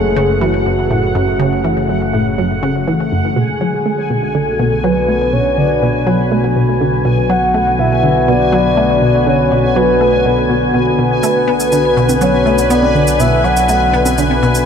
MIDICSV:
0, 0, Header, 1, 7, 480
1, 0, Start_track
1, 0, Tempo, 491803
1, 1361, Time_signature, 4, 2, 24, 8
1, 14303, End_track
2, 0, Start_track
2, 0, Title_t, "Synth texture"
2, 0, Program_c, 0, 99
2, 0, Note_on_c, 0, 78, 79
2, 3278, Note_on_c, 0, 80, 81
2, 3290, Note_off_c, 0, 78, 0
2, 14303, Note_off_c, 0, 80, 0
2, 14303, End_track
3, 0, Start_track
3, 0, Title_t, "Soft synth lead"
3, 0, Program_c, 1, 80
3, 0, Note_on_c, 1, 68, 101
3, 402, Note_on_c, 1, 66, 95
3, 417, Note_off_c, 1, 68, 0
3, 2801, Note_off_c, 1, 66, 0
3, 3287, Note_on_c, 1, 68, 92
3, 4241, Note_on_c, 1, 69, 98
3, 4255, Note_off_c, 1, 68, 0
3, 4718, Note_on_c, 1, 71, 99
3, 4733, Note_off_c, 1, 69, 0
3, 5201, Note_on_c, 1, 73, 109
3, 5216, Note_off_c, 1, 71, 0
3, 5437, Note_on_c, 1, 74, 102
3, 5452, Note_off_c, 1, 73, 0
3, 5919, Note_off_c, 1, 74, 0
3, 7126, Note_on_c, 1, 78, 119
3, 7606, Note_on_c, 1, 76, 107
3, 7621, Note_off_c, 1, 78, 0
3, 8088, Note_on_c, 1, 74, 107
3, 8102, Note_off_c, 1, 76, 0
3, 9041, Note_on_c, 1, 73, 99
3, 9056, Note_off_c, 1, 74, 0
3, 9523, Note_on_c, 1, 71, 84
3, 9538, Note_off_c, 1, 73, 0
3, 10242, Note_off_c, 1, 71, 0
3, 10969, Note_on_c, 1, 71, 95
3, 11927, Note_on_c, 1, 73, 98
3, 11942, Note_off_c, 1, 71, 0
3, 12403, Note_on_c, 1, 74, 102
3, 12417, Note_off_c, 1, 73, 0
3, 12881, Note_on_c, 1, 76, 112
3, 12896, Note_off_c, 1, 74, 0
3, 13117, Note_on_c, 1, 78, 106
3, 13132, Note_off_c, 1, 76, 0
3, 13599, Note_off_c, 1, 78, 0
3, 14303, End_track
4, 0, Start_track
4, 0, Title_t, "Analog synth pad"
4, 0, Program_c, 2, 89
4, 0, Note_on_c, 2, 49, 82
4, 0, Note_on_c, 2, 57, 81
4, 0, Note_on_c, 2, 66, 74
4, 0, Note_on_c, 2, 73, 70
4, 3274, Note_on_c, 2, 50, 92
4, 3279, Note_off_c, 2, 57, 0
4, 3279, Note_off_c, 2, 66, 0
4, 3280, Note_off_c, 2, 73, 0
4, 3282, Note_off_c, 2, 49, 0
4, 3423, Note_on_c, 2, 59, 73
4, 3592, Note_on_c, 2, 66, 82
4, 4345, Note_on_c, 2, 71, 86
4, 10993, Note_off_c, 2, 71, 0
4, 11005, Note_on_c, 2, 71, 88
4, 14303, Note_off_c, 2, 50, 0
4, 14303, Note_off_c, 2, 59, 0
4, 14303, Note_off_c, 2, 66, 0
4, 14303, Note_off_c, 2, 71, 0
4, 14303, End_track
5, 0, Start_track
5, 0, Title_t, "Synth arpeggio sound"
5, 0, Program_c, 3, 84
5, 160, Note_on_c, 3, 49, 101
5, 357, Note_off_c, 3, 49, 0
5, 402, Note_on_c, 3, 52, 81
5, 533, Note_off_c, 3, 52, 0
5, 644, Note_on_c, 3, 42, 74
5, 721, Note_off_c, 3, 42, 0
5, 885, Note_on_c, 3, 45, 75
5, 1014, Note_off_c, 3, 45, 0
5, 1123, Note_on_c, 3, 42, 94
5, 1253, Note_off_c, 3, 42, 0
5, 1361, Note_on_c, 3, 49, 100
5, 1558, Note_off_c, 3, 49, 0
5, 1603, Note_on_c, 3, 52, 73
5, 1733, Note_off_c, 3, 52, 0
5, 1844, Note_on_c, 3, 42, 75
5, 1921, Note_off_c, 3, 42, 0
5, 2084, Note_on_c, 3, 45, 75
5, 2214, Note_off_c, 3, 45, 0
5, 2326, Note_on_c, 3, 42, 94
5, 2454, Note_off_c, 3, 42, 0
5, 2564, Note_on_c, 3, 49, 99
5, 2759, Note_off_c, 3, 49, 0
5, 2806, Note_on_c, 3, 52, 77
5, 2935, Note_off_c, 3, 52, 0
5, 3047, Note_on_c, 3, 42, 73
5, 3123, Note_off_c, 3, 42, 0
5, 3282, Note_on_c, 3, 47, 99
5, 3412, Note_off_c, 3, 47, 0
5, 3522, Note_on_c, 3, 54, 96
5, 3718, Note_off_c, 3, 54, 0
5, 3764, Note_on_c, 3, 57, 73
5, 3894, Note_off_c, 3, 57, 0
5, 4003, Note_on_c, 3, 47, 74
5, 4081, Note_off_c, 3, 47, 0
5, 4244, Note_on_c, 3, 50, 77
5, 4374, Note_off_c, 3, 50, 0
5, 4484, Note_on_c, 3, 47, 101
5, 4614, Note_off_c, 3, 47, 0
5, 4722, Note_on_c, 3, 54, 99
5, 4919, Note_off_c, 3, 54, 0
5, 4963, Note_on_c, 3, 57, 74
5, 5093, Note_off_c, 3, 57, 0
5, 5202, Note_on_c, 3, 47, 82
5, 5280, Note_off_c, 3, 47, 0
5, 5443, Note_on_c, 3, 50, 76
5, 5573, Note_off_c, 3, 50, 0
5, 5685, Note_on_c, 3, 47, 101
5, 5814, Note_off_c, 3, 47, 0
5, 5920, Note_on_c, 3, 54, 102
5, 6117, Note_off_c, 3, 54, 0
5, 6163, Note_on_c, 3, 57, 78
5, 6293, Note_off_c, 3, 57, 0
5, 6405, Note_on_c, 3, 47, 78
5, 6482, Note_off_c, 3, 47, 0
5, 6644, Note_on_c, 3, 50, 75
5, 6774, Note_off_c, 3, 50, 0
5, 6881, Note_on_c, 3, 47, 99
5, 7012, Note_off_c, 3, 47, 0
5, 7121, Note_on_c, 3, 54, 101
5, 7318, Note_off_c, 3, 54, 0
5, 7362, Note_on_c, 3, 57, 74
5, 7493, Note_off_c, 3, 57, 0
5, 7602, Note_on_c, 3, 47, 76
5, 7680, Note_off_c, 3, 47, 0
5, 7841, Note_on_c, 3, 50, 75
5, 7972, Note_off_c, 3, 50, 0
5, 8082, Note_on_c, 3, 47, 102
5, 8213, Note_off_c, 3, 47, 0
5, 8320, Note_on_c, 3, 54, 102
5, 8517, Note_off_c, 3, 54, 0
5, 8562, Note_on_c, 3, 57, 79
5, 8693, Note_off_c, 3, 57, 0
5, 8802, Note_on_c, 3, 47, 76
5, 8880, Note_off_c, 3, 47, 0
5, 9044, Note_on_c, 3, 50, 82
5, 9174, Note_off_c, 3, 50, 0
5, 9287, Note_on_c, 3, 47, 98
5, 9415, Note_off_c, 3, 47, 0
5, 9527, Note_on_c, 3, 54, 97
5, 9721, Note_off_c, 3, 54, 0
5, 9767, Note_on_c, 3, 57, 77
5, 9895, Note_off_c, 3, 57, 0
5, 10008, Note_on_c, 3, 47, 79
5, 10083, Note_off_c, 3, 47, 0
5, 10245, Note_on_c, 3, 47, 76
5, 10440, Note_off_c, 3, 47, 0
5, 10485, Note_on_c, 3, 47, 77
5, 10561, Note_off_c, 3, 47, 0
5, 10723, Note_on_c, 3, 47, 75
5, 10853, Note_off_c, 3, 47, 0
5, 10963, Note_on_c, 3, 57, 84
5, 11093, Note_off_c, 3, 57, 0
5, 11201, Note_on_c, 3, 59, 98
5, 11398, Note_off_c, 3, 59, 0
5, 11443, Note_on_c, 3, 50, 76
5, 11573, Note_off_c, 3, 50, 0
5, 11682, Note_on_c, 3, 47, 102
5, 11813, Note_off_c, 3, 47, 0
5, 11920, Note_on_c, 3, 54, 99
5, 12117, Note_off_c, 3, 54, 0
5, 12159, Note_on_c, 3, 57, 77
5, 12291, Note_off_c, 3, 57, 0
5, 12398, Note_on_c, 3, 59, 101
5, 12596, Note_off_c, 3, 59, 0
5, 12640, Note_on_c, 3, 50, 74
5, 12772, Note_off_c, 3, 50, 0
5, 12879, Note_on_c, 3, 47, 100
5, 13011, Note_off_c, 3, 47, 0
5, 13119, Note_on_c, 3, 54, 97
5, 13317, Note_off_c, 3, 54, 0
5, 13361, Note_on_c, 3, 57, 78
5, 13492, Note_off_c, 3, 57, 0
5, 13600, Note_on_c, 3, 59, 102
5, 13797, Note_off_c, 3, 59, 0
5, 13842, Note_on_c, 3, 50, 82
5, 13973, Note_off_c, 3, 50, 0
5, 14081, Note_on_c, 3, 47, 105
5, 14212, Note_off_c, 3, 47, 0
5, 14303, End_track
6, 0, Start_track
6, 0, Title_t, "Synth drone"
6, 0, Program_c, 4, 95
6, 0, Note_on_c, 4, 30, 87
6, 3256, Note_off_c, 4, 30, 0
6, 3282, Note_on_c, 4, 35, 88
6, 10938, Note_off_c, 4, 35, 0
6, 10962, Note_on_c, 4, 35, 90
6, 14303, Note_off_c, 4, 35, 0
6, 14303, End_track
7, 0, Start_track
7, 0, Title_t, "Drums"
7, 10963, Note_on_c, 9, 69, 53
7, 11060, Note_off_c, 9, 69, 0
7, 11320, Note_on_c, 9, 69, 62
7, 11418, Note_off_c, 9, 69, 0
7, 11440, Note_on_c, 9, 69, 49
7, 11537, Note_off_c, 9, 69, 0
7, 11801, Note_on_c, 9, 63, 73
7, 11801, Note_on_c, 9, 69, 64
7, 11898, Note_off_c, 9, 63, 0
7, 11898, Note_off_c, 9, 69, 0
7, 11920, Note_on_c, 9, 69, 53
7, 12017, Note_off_c, 9, 69, 0
7, 12279, Note_on_c, 9, 69, 62
7, 12377, Note_off_c, 9, 69, 0
7, 12399, Note_on_c, 9, 69, 50
7, 12496, Note_off_c, 9, 69, 0
7, 12520, Note_on_c, 9, 63, 65
7, 12617, Note_off_c, 9, 63, 0
7, 12759, Note_on_c, 9, 69, 64
7, 12857, Note_off_c, 9, 69, 0
7, 12881, Note_on_c, 9, 69, 49
7, 12978, Note_off_c, 9, 69, 0
7, 13239, Note_on_c, 9, 69, 62
7, 13336, Note_off_c, 9, 69, 0
7, 13358, Note_on_c, 9, 69, 49
7, 13455, Note_off_c, 9, 69, 0
7, 13719, Note_on_c, 9, 63, 75
7, 13719, Note_on_c, 9, 69, 63
7, 13817, Note_off_c, 9, 63, 0
7, 13817, Note_off_c, 9, 69, 0
7, 13838, Note_on_c, 9, 69, 51
7, 13936, Note_off_c, 9, 69, 0
7, 13958, Note_on_c, 9, 63, 51
7, 14056, Note_off_c, 9, 63, 0
7, 14197, Note_on_c, 9, 69, 61
7, 14295, Note_off_c, 9, 69, 0
7, 14303, End_track
0, 0, End_of_file